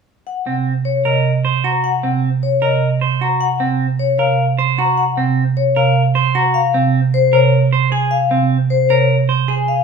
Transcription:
0.27 0.52 F#5 medium
0.46 0.72 C3 soft
0.46 0.72 C4 soft
0.85 1.11 C#5 medium
1.05 1.31 C3 medium
1.05 1.31 A#4 medium
1.05 1.31 D#5 soft
1.45 1.70 C5 medium
1.64 1.90 F#4 medium
1.64 1.90 A#5 soft
1.84 2.09 F#5 medium
2.03 2.29 C3 medium
2.03 2.29 C4 medium
2.43 2.68 C#5 medium
2.62 2.88 C3 medium
2.62 2.88 A#4 medium
2.62 2.88 D#5 medium
3.01 3.27 C5 medium
3.21 3.47 F#4 medium
3.21 3.47 A#5 medium
3.41 3.66 F#5 medium
3.60 3.86 C3 soft
3.60 3.86 C4 medium
3.99 4.25 C#5 medium
4.19 4.45 C3 medium
4.19 4.45 A#4 medium
4.19 4.45 F5 medium
4.58 4.84 C5 medium
4.78 5.04 F#4 medium
4.78 5.04 A#5 medium
4.97 5.23 F#5 medium
5.17 5.43 C3 medium
5.17 5.43 C4 medium
5.57 5.82 C#5 medium
5.76 6.02 C3 medium
5.76 6.02 A#4 medium
5.76 6.02 F5 medium
6.15 6.41 C5 medium
6.35 6.60 F#4 medium
6.35 6.60 A#5 medium
6.54 6.80 F5 medium
6.74 7.00 C3 medium
6.74 7.00 C4 medium
7.14 7.39 C5 medium
7.33 7.58 C3 medium
7.33 7.58 A#4 medium
7.33 7.59 C#5 medium
7.73 7.91 C5 medium
7.92 8.17 G#4 medium
7.92 8.17 G#5 medium
8.11 8.37 F5 medium
8.31 8.57 C3 medium
8.31 8.56 C4 medium
8.70 8.96 C5 medium
8.90 9.16 C3 medium
8.90 9.15 A#4 medium
8.90 9.15 C#5 medium
9.29 9.55 C5 medium
9.48 9.74 G#4 medium
9.48 9.74 G#5 medium
9.68 9.84 F5 medium

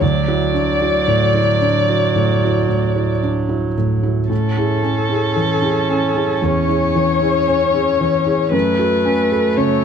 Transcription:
0.01 0.27 D2 soft
0.01 4.09 F#3 soft
0.01 3.23 D5 medium
0.28 0.52 E4 soft
0.28 0.52 F#4 soft
0.54 0.97 D4 soft
0.81 1.05 E4 soft
0.81 1.06 F#4 soft
1.08 1.51 A2 soft
1.35 1.59 E4 soft
1.35 1.59 F#4 soft
1.61 2.04 D4 soft
1.88 2.12 E4 soft
1.88 2.13 F#4 soft
2.16 2.41 A2 soft
2.44 2.67 E4 soft
2.44 2.67 F#4 soft
2.69 3.12 A2 soft
2.96 3.20 E4 soft
2.96 3.20 F#4 soft
3.23 3.66 D4 soft
3.49 3.73 E4 soft
3.49 3.73 F#4 soft
3.77 4.20 A2 soft
4.03 4.27 E4 soft
4.03 4.27 F#4 soft
4.29 4.56 A2 soft
4.29 8.54 C#4 soft
4.29 6.44 A4 medium
4.57 4.81 E4 soft
4.57 4.81 G#4 soft
4.83 5.25 C#4 soft
5.09 5.33 E4 soft
5.09 5.34 G#4 soft
5.36 5.79 E3 soft
5.62 5.86 E4 soft
5.62 5.87 G#4 soft
5.90 6.32 C#4 soft
6.15 6.39 E4 soft
6.15 6.39 G#4 soft
6.42 6.68 E2 soft
6.42 8.52 C#5 medium
6.69 6.92 E4 soft
6.69 6.93 G#4 soft
6.96 7.38 E3 soft
7.21 7.45 E4 soft
7.21 7.45 G#4 soft
7.48 7.90 C#4 soft
7.74 7.98 E4 soft
7.74 7.98 G#4 soft
8.01 8.43 E3 soft
8.26 8.51 E4 soft
8.26 8.50 G#4 soft
8.51 8.78 F#2 medium
8.51 9.85 A3 medium
8.51 9.59 B4 medium
8.79 9.03 F#4 soft
8.79 9.03 A4 soft
9.05 9.47 C#4 soft
9.32 9.55 F#4 soft
9.32 9.55 A4 soft
9.57 9.85 C#3 soft
9.57 9.85 C#5 medium

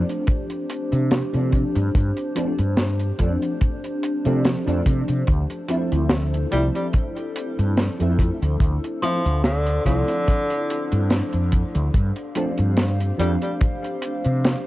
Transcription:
0.00 1.27 F3 medium
0.00 1.28 A3 medium
0.00 1.28 C4 medium
0.00 1.29 D4 medium
0.00 14.67 D4 medium
0.00 5.24 G4 medium
0.00 11.90 C5 medium
0.10 closed hi-hat medium
0.27 kick loud
0.27 closed hi-hat medium
0.50 closed hi-hat medium
0.70 closed hi-hat loud
0.92 1.20 C3 medium
0.92 closed hi-hat soft
1.11 snare loud
1.11 closed hi-hat medium
1.32 1.62 C3 medium
1.32 2.31 F3 medium
1.32 2.31 A3 medium
1.32 2.32 C4 medium
1.32 2.32 D4 medium
1.32 closed hi-hat medium
1.52 kick loud
1.52 closed hi-hat medium
1.75 1.89 G2 loud
1.75 closed hi-hat medium
1.95 2.11 G2 medium
1.95 kick loud
1.95 closed hi-hat medium
2.17 closed hi-hat soft
2.35 2.52 F3 medium
2.35 2.52 A3 medium
2.35 2.52 C4 medium
2.35 2.53 D4 medium
2.35 closed hi-hat loud
2.59 3.10 G2 medium
2.59 closed hi-hat soft
2.77 snare loud
2.77 closed hi-hat medium
2.99 closed hi-hat soft
3.18 3.36 F2 medium
3.18 4.20 F3 medium
3.18 4.21 A3 medium
3.18 4.21 C4 medium
3.18 4.22 D4 medium
3.18 kick medium
3.18 closed hi-hat medium
3.42 closed hi-hat medium
3.61 kick loud
3.61 closed hi-hat medium
3.84 closed hi-hat medium
4.03 closed hi-hat medium
4.25 4.54 C3 medium
4.25 4.61 F3 medium
4.25 4.61 A3 medium
4.25 4.62 C4 medium
4.25 4.62 D4 medium
4.25 closed hi-hat medium
4.45 snare loud
4.45 closed hi-hat medium
4.66 4.80 F2 medium
4.66 5.25 F3 medium
4.66 5.25 A3 medium
4.66 5.25 C4 medium
4.66 5.26 D4 loud
4.66 closed hi-hat medium
4.86 5.02 C3 medium
4.86 kick loud
4.86 closed hi-hat loud
5.08 5.22 C3 medium
5.08 closed hi-hat medium
5.27 5.44 D2 loud
5.27 11.90 A4 medium
5.27 kick loud
5.27 closed hi-hat medium
5.50 closed hi-hat medium
5.68 6.48 F3 medium
5.68 6.48 A3 medium
5.68 6.48 C4 medium
5.68 6.48 E4 medium
5.68 closed hi-hat medium
5.92 6.44 D2 medium
5.92 closed hi-hat medium
6.10 snare loud
6.10 closed hi-hat medium
6.34 closed hi-hat medium
6.51 6.69 C2 medium
6.51 7.94 F3 medium
6.51 6.67 G3 medium
6.51 7.94 A3 medium
6.51 7.95 C4 medium
6.51 7.96 E4 medium
6.51 closed hi-hat medium
6.75 6.87 G3 medium
6.75 closed hi-hat medium
6.93 kick loud
6.93 closed hi-hat medium
7.17 closed hi-hat medium
7.36 closed hi-hat medium
7.59 7.87 G2 medium
7.59 closed hi-hat soft
7.77 snare loud
7.77 closed hi-hat medium
7.99 8.29 F2 medium
7.99 8.97 F3 medium
7.99 8.98 A3 medium
7.99 8.98 C4 medium
7.99 8.99 E4 medium
7.99 closed hi-hat soft
8.19 kick medium
8.19 closed hi-hat medium
8.42 8.55 D2 loud
8.42 closed hi-hat medium
8.60 8.77 D2 loud
8.60 kick loud
8.60 closed hi-hat medium
8.84 closed hi-hat medium
9.02 9.18 F3 medium
9.02 9.40 F3 medium
9.02 9.19 A3 medium
9.02 9.19 C4 medium
9.02 9.19 E4 medium
9.02 closed hi-hat medium
9.25 9.77 D2 medium
9.25 closed hi-hat soft
9.44 9.82 D3 loud
9.44 snare loud
9.44 closed hi-hat medium
9.66 closed hi-hat soft
9.84 10.02 C2 medium
9.84 11.03 D3 loud
9.84 11.91 F3 medium
9.84 11.92 A3 medium
9.84 11.92 C4 medium
9.84 11.93 E4 medium
9.84 kick medium
9.84 closed hi-hat medium
10.08 closed hi-hat medium
10.28 kick loud
10.28 closed hi-hat medium
10.50 closed hi-hat medium
10.70 closed hi-hat medium
10.91 11.20 G2 medium
10.91 closed hi-hat medium
11.10 snare loud
11.10 closed hi-hat medium
11.33 11.62 F2 medium
11.33 closed hi-hat soft
11.52 kick medium
11.52 closed hi-hat loud
11.75 11.89 D2 loud
11.75 closed hi-hat medium
11.94 12.10 G2 medium
11.94 14.67 G4 medium
11.94 14.67 C5 medium
11.94 14.67 F5 medium
11.94 kick loud
11.94 closed hi-hat medium
12.16 closed hi-hat medium
12.35 13.14 F3 medium
12.35 13.14 A3 medium
12.35 13.15 C4 medium
12.35 13.15 D4 medium
12.35 closed hi-hat loud
12.58 13.10 G2 medium
12.58 closed hi-hat medium
12.77 snare loud
12.77 closed hi-hat medium
13.00 closed hi-hat medium
13.18 13.35 F2 medium
13.18 14.61 F3 medium
13.18 13.34 G3 medium
13.18 14.61 A3 medium
13.18 14.62 C4 medium
13.18 14.62 D4 medium
13.18 closed hi-hat loud
13.42 13.54 G3 medium
13.42 closed hi-hat medium
13.61 kick loud
13.61 closed hi-hat medium
13.84 closed hi-hat medium
14.02 closed hi-hat medium
14.25 14.54 C3 medium
14.25 closed hi-hat medium
14.44 snare loud
14.44 closed hi-hat medium

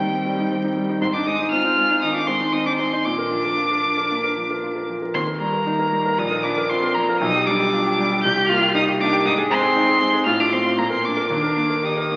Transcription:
0.00 1.04 D#2 medium
0.00 0.26 G3 soft
0.00 0.98 G3 medium
0.00 0.14 C4 soft
0.00 0.39 D#4 soft
0.00 1.01 G5 medium
0.14 0.34 C4 soft
0.26 0.46 G3 soft
0.39 0.59 D#4 soft
0.52 0.72 C4 medium
0.64 0.84 D#4 medium
0.77 0.97 G3 soft
0.89 1.02 D#4 medium
1.01 1.99 G#2 medium
1.01 1.13 C4 medium
1.01 1.06 C6 loud
1.14 1.26 D4 medium
1.14 1.34 D#4 medium
1.14 1.28 D6 medium
1.27 1.47 G#3 medium
1.27 1.35 D#4 medium
1.27 1.51 D#6 loud
1.40 1.60 D#4 medium
1.51 1.72 C4 medium
1.51 2.01 F4 medium
1.51 2.01 F6 loud
1.64 1.85 D#4 medium
1.77 1.97 G#3 soft
1.90 2.10 D#4 medium
2.02 2.23 D#3 medium
2.02 2.14 D#4 medium
2.02 2.14 D#6 medium
2.14 2.20 D4 medium
2.14 2.36 D#4 medium
2.14 2.28 D6 loud
2.27 2.48 G#3 medium
2.27 2.35 C4 medium
2.27 2.54 C6 medium
2.41 2.61 D#4 medium
2.53 2.74 C4 medium
2.53 2.67 D#4 medium
2.53 2.66 D#6 medium
2.66 2.79 D4 medium
2.66 2.87 D#4 medium
2.66 2.71 D6 medium
2.78 3.00 G#3 soft
2.78 2.87 C4 medium
2.78 3.06 C6 medium
2.93 3.05 D#4 medium
3.05 4.07 A#2 medium
3.05 4.85 D4 medium
3.05 4.88 D6 loud
3.19 3.39 A#4 soft
3.31 3.52 F3 soft
3.45 3.65 A#4 soft
3.58 3.78 F4 soft
3.71 3.92 A#4 soft
3.84 4.05 F3 soft
3.98 4.18 A#4 soft
4.11 4.32 A#3 soft
4.24 4.44 A#4 soft
4.37 4.58 F3 soft
4.51 4.71 A#4 soft
4.63 4.84 F4 soft
4.76 4.96 A#4 soft
4.90 5.10 F3 soft
5.02 5.15 A#4 soft
5.14 6.15 D#2 medium
5.14 5.23 C4 medium
5.14 5.22 C6 medium
5.27 5.48 A#4 soft
5.40 5.61 G3 medium
5.40 6.20 A#3 medium
5.40 6.20 A#5 medium
5.53 5.74 A#4 soft
5.66 5.87 D#4 medium
5.79 6.00 A#4 soft
5.93 6.13 G3 soft
6.05 6.18 A#4 medium
6.18 7.18 A#1 medium
6.18 6.46 D#4 medium
6.18 6.45 D#6 medium
6.31 6.52 A#4 medium
6.43 6.65 F3 medium
6.43 6.69 D4 medium
6.43 6.71 D6 medium
6.58 6.78 A#4 medium
6.70 6.97 C4 medium
6.70 6.90 F4 medium
6.70 6.96 C6 loud
6.83 7.03 A#4 medium
6.94 7.16 F3 medium
6.94 7.21 A#3 medium
6.94 7.19 A#5 medium
7.09 7.21 A#4 medium
7.20 8.21 B1 medium
7.20 7.49 D#4 loud
7.20 7.47 D#6 loud
7.35 7.55 G4 medium
7.46 7.68 G3 medium
7.46 8.23 D4 medium
7.46 8.23 D6 loud
7.60 7.81 G4 medium
7.73 7.94 F4 medium
7.86 8.06 G4 medium
7.99 8.19 G3 medium
8.12 8.24 G4 medium
8.23 9.23 C2 medium
8.23 8.50 G4 loud
8.23 8.48 G6 loud
8.37 8.57 G4 medium
8.49 8.70 A#3 medium
8.49 8.74 F4 loud
8.49 8.74 F6 loud
8.63 8.83 G4 medium
8.75 8.95 D#4 medium
8.75 8.83 D#4 loud
8.75 8.83 D#6 loud
8.88 9.08 G4 medium
9.00 9.21 A#3 medium
9.00 9.25 D4 loud
9.00 9.25 D6 loud
9.13 9.25 G4 medium
9.25 10.23 G#2 loud
9.25 9.34 D#4 loud
9.25 9.34 D#6 loud
9.38 9.58 G#4 medium
9.50 9.71 G#3 medium
9.50 10.25 C4 loud
9.50 10.25 C6 loud
9.63 9.83 G#4 medium
9.76 9.96 D#4 medium
9.89 10.09 G#4 medium
10.01 10.22 G#3 medium
10.13 10.26 G#4 medium
10.26 10.76 A2 medium
10.26 10.32 F4 loud
10.26 10.41 F6 loud
10.39 10.45 D4 medium
10.39 10.60 F4 medium
10.39 10.54 D6 loud
10.52 10.60 C4 medium
10.52 10.73 C4 medium
10.52 10.80 C6 medium
10.65 10.78 F4 medium
10.78 11.29 A#2 medium
10.78 10.83 A#3 medium
10.78 10.91 A#5 loud
10.90 10.96 C4 medium
10.90 11.12 A#4 medium
10.90 11.06 C6 medium
11.04 11.25 A#3 soft
11.04 11.29 D4 medium
11.04 11.31 D6 medium
11.17 11.30 A#4 medium
11.30 12.16 D#2 medium
11.30 11.83 D4 medium
11.30 11.86 D6 loud
11.43 11.65 A#4 medium
11.57 11.78 A#3 soft
11.70 11.92 A#4 medium
11.83 12.16 D#4 medium
11.83 12.05 G4 soft
11.83 12.16 D#6 medium
11.97 12.16 A#4 medium
12.10 12.16 A#3 soft

